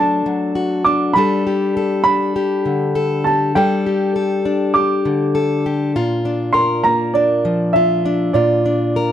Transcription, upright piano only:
Already playing: A5
0.84 D6
1.13 B5
2.04 B5
3.24 A5
3.55 G5
4.74 D6
6.53 C6
6.84 A#5
7.14 D5
7.73 E5
8.33 D5

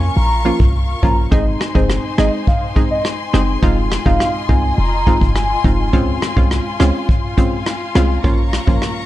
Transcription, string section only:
Already playing: F4 A#4 F5 C#6
1.32 D#4 C5 G#5 C6
3.63 F4 D#5
5.93 F5
8.24 A#5 C#6

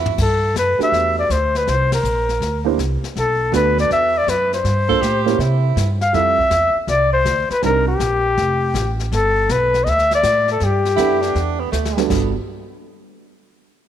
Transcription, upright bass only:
Already playing: E2
0.18 G2
0.54 F#2
0.79 muted upright bass stroke
0.92 E2
1.29 D2
1.67 C2
2.03 A#1
2.40 D2
2.78 C2
3.03 muted upright bass stroke
3.15 B1
3.52 D2
3.90 E2
4.27 F#2
4.64 G2
5.01 A2
5.38 C3
5.76 G2
6.13 F2
6.50 E2
6.75 muted upright bass stroke
6.87 C2
7.25 D2
7.50 muted upright bass stroke
7.62 C2
7.99 A#1
8.37 F1
8.74 A1
9.12 G1
9.49 B1
9.86 D2
10.23 A2
10.61 G2
10.98 F#2
11.35 E2
11.72 D2
12.10 G1

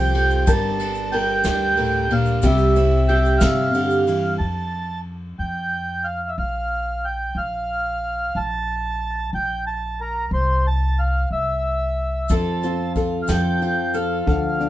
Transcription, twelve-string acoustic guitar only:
Already playing: F3
0.00 G4
0.15 F4
0.47 G3
0.80 D4
1.12 A#4
1.45 D4
1.77 A#4
2.11 D4
2.44 G3
2.76 E4
3.09 G4
3.75 G4
12.30 F3 A4
12.63 C4
12.96 F4
13.30 A4
13.62 F4
13.94 A4

